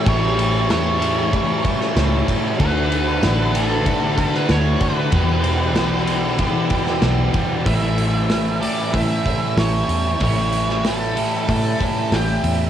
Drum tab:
RD |x-x-x-x-x-x-x-x-|x-x-x-x-x-x-x-x-|x-x-x-x-x-x-x-x-|----------------|
HH |----------------|----------------|----------------|o-o-o-o-o-o-o-o-|
SD |----o------oo---|----o------oo---|----o------oo---|----o-------o---|
BD |o-------o-o---o-|o-------o-o---o-|o-------o-o---o-|o-------o-o-----|

RD |----------------|
HH |o-o-o-o-o-o-o-o-|
SD |---oo-------o---|
BD |o-------o-o-----|